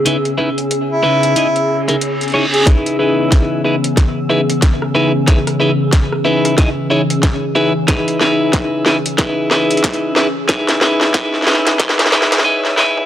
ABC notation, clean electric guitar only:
X:1
M:4/4
L:1/16
Q:"Swing 16ths" 1/4=92
K:C#m
V:1 name="Clean electric guitar"
[C,DEGB] z [C,DEGB] z3 [C,DEGB]2 [C,DEGd] z2 [C,DEG^A] z2 [C,DEGc] z | [DEGB]2 [DEGB]4 [DEGB] z3 [DEGB] z3 [DEGB] z | [DEGB] z [DEGB] z3 [DEGB]2 [DEGd] z [DEGc] z3 [DEGB] z | [DEGB]2 [DEGB]4 [DEGB] z [DEGB]2 [DEGB]4 [DEGB] z |
[DEGB]2 [DEGB]2 [DEGB]2 [DEGB]2 [DEGB]2 [DEGB]2 [DEGB]2 [DEGB]2 |]